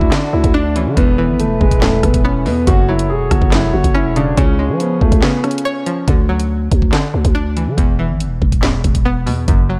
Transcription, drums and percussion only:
0.01 kick medium
0.12 snare loud
0.12 clap medium
0.12 closed hi-hat medium
0.44 kick medium
0.44 closed hi-hat medium
0.76 closed hi-hat medium
0.97 kick loud
0.97 closed hi-hat medium
1.40 closed hi-hat medium
1.61 kick loud
1.71 kick medium
1.71 closed hi-hat medium
1.82 snare loud
1.82 clap medium
2.03 kick medium
2.03 cross-stick medium
2.03 closed hi-hat medium
2.14 kick medium
2.14 closed hi-hat medium
2.46 open hi-hat medium
2.67 kick loud
2.67 closed hi-hat medium
2.99 closed hi-hat medium
3.31 kick loud
3.31 cross-stick loud
3.31 closed hi-hat medium
3.42 kick medium
3.52 snare loud
3.52 clap medium
3.52 closed hi-hat medium
3.84 kick medium
3.84 closed hi-hat medium
4.16 closed hi-hat medium
4.37 kick loud
4.37 closed hi-hat medium
4.80 closed hi-hat medium
5.01 kick loud
5.12 kick medium
5.12 closed hi-hat medium
5.22 snare loud
5.22 clap medium
5.44 cross-stick medium
5.44 closed hi-hat soft
5.51 closed hi-hat medium
5.58 closed hi-hat medium
5.86 closed hi-hat medium
6.08 kick loud
6.08 closed hi-hat medium
6.40 closed hi-hat medium
6.71 kick loud
6.71 closed hi-hat medium
6.82 kick medium
6.93 snare loud
6.93 clap medium
6.93 closed hi-hat medium
7.25 kick medium
7.25 closed hi-hat medium
7.57 closed hi-hat medium
7.78 kick loud
7.78 closed hi-hat medium
8.20 closed hi-hat medium
8.42 kick loud
8.52 kick medium
8.52 closed hi-hat medium
8.63 snare loud
8.63 clap medium
8.84 kick medium
8.84 closed hi-hat medium
8.95 kick medium
8.95 closed hi-hat medium
9.27 open hi-hat medium
9.48 kick loud
9.48 closed hi-hat medium

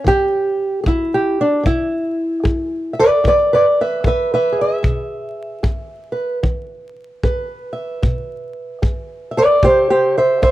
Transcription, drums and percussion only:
0.07 kick medium
0.86 kick medium
1.66 kick medium
2.45 kick medium
3.25 kick medium
4.04 kick medium
4.84 kick medium
5.64 kick medium
6.44 kick medium
7.23 kick medium
8.03 kick medium
8.83 kick medium
9.63 kick medium
10.43 kick medium

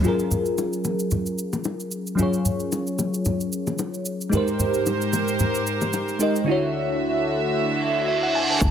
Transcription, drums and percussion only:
0.04 low conga medium
0.04 shaker medium
0.19 shaker soft
0.31 low conga medium
0.31 shaker medium
0.45 shaker soft
0.58 high bongo medium
0.58 shaker medium
0.73 shaker soft
0.84 low bongo medium
0.84 shaker medium
0.99 shaker medium
1.11 high bongo soft
1.11 low conga medium
1.11 shaker medium
1.26 shaker soft
1.38 shaker medium
1.53 low bongo medium
1.53 shaker medium
1.64 high bongo medium
1.64 shaker medium
1.80 shaker soft
1.91 shaker medium
2.07 shaker soft
2.18 low conga medium
2.18 shaker medium
2.33 shaker soft
2.45 low conga medium
2.45 shaker medium
2.60 shaker soft
2.72 high bongo medium
2.72 shaker medium
2.87 shaker medium
2.99 low bongo medium
2.99 shaker medium
3.14 shaker medium
3.25 high bongo soft
3.25 low conga medium
3.25 shaker medium
3.40 shaker medium
3.52 shaker medium
3.67 low bongo medium
3.67 shaker medium
3.78 high bongo medium
3.78 shaker medium
3.94 shaker soft
4.05 shaker medium
4.21 shaker soft
4.33 low conga medium
4.33 shaker medium
4.48 shaker soft
4.59 low conga medium
4.59 shaker medium
4.74 shaker soft
4.86 high bongo medium
4.86 shaker medium
5.01 shaker medium
5.13 low bongo medium
5.13 shaker medium
5.28 shaker medium
5.39 high bongo soft
5.39 low conga medium
5.39 shaker medium
5.55 shaker medium
5.67 shaker medium
5.81 low bongo medium
5.81 shaker medium
5.93 high bongo medium
5.93 shaker medium
6.08 shaker soft
6.20 shaker medium
6.36 shaker soft
8.61 kick loud
8.61 low conga medium
8.61 shaker medium

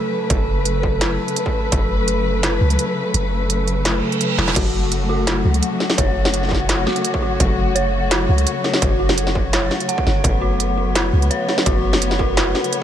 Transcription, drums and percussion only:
0.30 kick loud
0.30 closed hi-hat medium
0.65 closed hi-hat medium
0.83 kick medium
1.01 snare loud
1.01 closed hi-hat medium
1.28 closed hi-hat soft
1.36 closed hi-hat medium
1.46 kick medium
1.72 kick loud
1.72 closed hi-hat medium
2.08 closed hi-hat medium
2.43 snare loud
2.43 closed hi-hat medium
2.70 closed hi-hat soft
2.79 closed hi-hat medium
3.14 closed hi-hat medium
3.50 closed hi-hat medium
3.68 closed hi-hat soft
3.85 snare loud
3.85 closed hi-hat medium
4.12 closed hi-hat soft
4.21 closed hi-hat medium
4.38 snare medium
4.48 snare medium
4.56 kick loud
4.56 closed hi-hat medium
4.56 crash medium
4.92 closed hi-hat medium
5.27 snare loud
5.27 closed hi-hat medium
5.54 closed hi-hat soft
5.63 closed hi-hat medium
5.80 snare medium
5.90 snare medium
5.98 kick loud
5.98 closed hi-hat medium
6.25 snare medium
6.34 closed hi-hat medium
6.43 snare soft
6.49 kick medium
6.49 snare soft
6.55 snare soft
6.69 snare loud
6.69 closed hi-hat medium
6.87 snare medium
6.96 closed hi-hat soft
7.05 closed hi-hat medium
7.14 kick medium
7.40 kick loud
7.40 closed hi-hat medium
7.76 closed hi-hat medium
8.11 snare loud
8.11 closed hi-hat medium
8.38 closed hi-hat soft
8.47 closed hi-hat medium
8.64 snare soft
8.74 snare medium
8.82 kick loud
8.82 closed hi-hat medium
9.09 snare medium
9.18 closed hi-hat medium
9.27 snare soft
9.35 kick medium
9.53 snare loud
9.53 closed hi-hat medium
9.71 snare medium
9.80 closed hi-hat soft
9.89 closed hi-hat medium
9.98 kick medium
10.07 snare soft
10.24 kick loud
10.24 closed hi-hat medium
10.60 closed hi-hat medium
10.95 snare loud
10.95 closed hi-hat medium
11.22 closed hi-hat soft
11.31 closed hi-hat medium
11.49 snare soft
11.58 snare medium
11.66 kick loud
11.66 closed hi-hat medium
11.93 snare medium
12.02 closed hi-hat medium
12.11 snare medium
12.19 kick medium
12.37 snare loud
12.37 closed hi-hat medium
12.55 snare medium
12.64 closed hi-hat soft
12.73 closed hi-hat medium

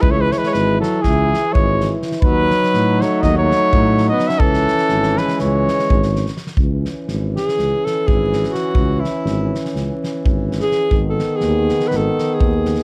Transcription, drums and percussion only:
0.03 kick medium
0.32 snare soft
0.44 snare soft
0.54 snare soft
0.83 snare soft
1.04 kick medium
1.04 snare soft
1.34 snare soft
1.55 kick medium
1.81 snare soft
2.02 snare soft
2.12 snare soft
2.22 kick medium
2.51 snare soft
2.63 snare soft
2.74 snare soft
3.02 snare soft
3.23 kick medium
3.23 snare soft
3.52 snare soft
3.73 kick medium
3.98 snare soft
4.19 snare soft
4.29 snare soft
4.40 kick medium
4.54 snare soft
4.68 snare soft
4.78 snare soft
4.89 snare soft
5.03 snare soft
5.17 snare soft
5.28 snare soft
5.39 snare soft
5.68 snare soft
5.79 snare soft
5.90 kick medium
6.03 snare soft
6.16 snare soft
6.27 snare soft
6.37 snare soft
6.47 snare soft
6.57 kick medium
6.85 snare soft
7.08 snare soft
7.37 snare soft
7.49 snare soft
7.59 snare soft
7.87 snare soft
8.08 kick medium
8.33 snare soft
8.44 snare soft
8.55 snare soft
8.75 kick medium
9.05 snare soft
9.27 snare soft
9.55 snare soft
9.65 snare soft
9.76 snare soft
10.04 snare soft
10.25 kick medium
10.52 snare soft
10.60 snare soft
10.72 snare soft
10.91 kick medium
11.19 snare soft
11.41 snare soft
11.69 snare soft
11.80 snare soft
11.91 snare soft
12.19 snare soft
12.40 kick medium
12.66 snare soft
12.75 snare soft

